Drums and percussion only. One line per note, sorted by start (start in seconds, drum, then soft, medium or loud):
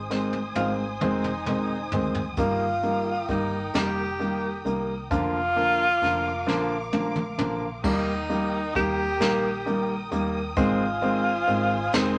0.11 snare medium
0.33 high tom soft
0.56 high tom medium
1.01 mid tom medium
1.24 mid tom medium
1.46 mid tom medium
1.92 floor tom medium
2.15 floor tom medium
2.37 kick loud
2.37 closed hi-hat medium
2.83 closed hi-hat soft
3.28 kick medium
3.28 closed hi-hat medium
3.74 snare loud
3.74 closed hi-hat medium
4.21 closed hi-hat soft
4.66 closed hi-hat medium
5.11 kick loud
5.11 closed hi-hat medium
5.57 closed hi-hat soft
6.02 snare soft
6.02 closed hi-hat medium
6.48 snare medium
6.93 high tom medium
7.16 mid tom medium
7.39 mid tom medium
7.84 kick loud
7.84 crash medium
8.30 closed hi-hat medium
8.75 kick medium
8.75 closed hi-hat medium
9.20 snare loud
9.20 closed hi-hat medium
9.67 closed hi-hat soft
10.11 closed hi-hat medium
10.56 kick loud
10.56 closed hi-hat loud
11.02 closed hi-hat soft
11.47 closed hi-hat medium
11.92 snare loud
11.92 closed hi-hat medium